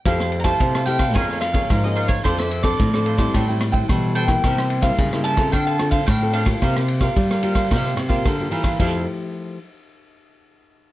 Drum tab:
CC |----------------|----------------|----------------|----------------|
RD |x-xxx-xxx-xxx-xx|x-xxx-xxx-xxx-xx|x-xxx-xxx-xxx-xx|x-xxx-xxx-xxx-xx|
SD |rr-r-r-rr-r-r--r|rr-r-r-rr-r-r--r|rr-r-r-rr-r-r--r|rr-r-r-rr-r-r--r|
BD |o--oo--oo--oo--o|o--oo--oo--oo--o|o--oo--oo--oo--o|o--oo--oo--oo--o|

CC |x---------------|
RD |----------------|
SD |----------------|
BD |o---------------|